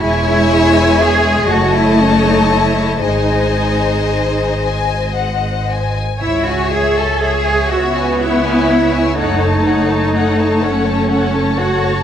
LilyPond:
<<
  \new Staff \with { instrumentName = "Violin section" } { \time 6/8 \key cis \minor \tempo 4. = 40 gis''4. a''4. | gis''4. gis''8 fis''8 gis''8 | e''16 gis''16 e''16 gis''16 e''16 gis''16 e''16 gis''16 e''16 gis''16 e''16 gis''16 | fis''16 a''16 fis''16 a''16 fis''16 a''16 fis''16 a''16 fis''16 a''16 fis''16 a''16 | }
  \new Staff \with { instrumentName = "Violin section" } { \time 6/8 \key cis \minor <cis'' e''>4. <cis'' dis''>4. | <bis' dis''>2~ <bis' dis''>8. r16 | <cis'' e''>16 <cis'' e''>16 <cis'' e''>16 <cis'' e''>16 <cis'' e''>16 <cis'' e''>16 <cis'' e''>16 <cis'' e''>16 <cis'' e''>16 <cis'' e''>16 <cis'' e''>16 <cis'' e''>16 | <a' cis''>16 <a' cis''>16 <a' cis''>16 <a' cis''>16 <a' cis''>16 <a' cis''>16 <a' cis''>16 <a' cis''>16 <a' cis''>16 <a' cis''>16 <a' cis''>16 <a' cis''>16 | }
  \new Staff \with { instrumentName = "Cello section" } { \time 6/8 \key cis \minor e'4 gis'8 fis'16 e'16 cis'16 dis'16 e'8 | dis'4. r4. | e'16 fis'16 gis'16 a'16 gis'8 fis'8 e'4 | dis'4. cis'4 fis'8 | }
  \new Staff \with { instrumentName = "Viola section" } { \time 6/8 \key cis \minor gis4. a4. | gis2~ gis16 r8. | r4. b4. | a2. | }
  \new Staff \with { instrumentName = "Double bass section" } { \clef bass \time 6/8 \key cis \minor e,,4. fis,,4. | gis,,2. | cis,4. cis,4. | fis,,4. fis,,4. | }
>>